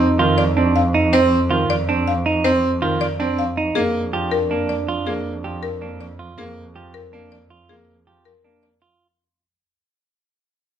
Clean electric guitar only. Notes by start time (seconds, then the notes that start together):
0.19 F4
0.57 D4
0.94 D#4
1.51 F4
1.89 D4
2.26 D#4
2.82 F4
3.20 D4
3.57 D#4
4.13 G4
4.51 D4
4.89 F4
5.44 G4
5.82 D4
6.19 F4
6.76 G4
7.13 D4
7.50 F4
8.07 G4
8.44 D4
8.82 F4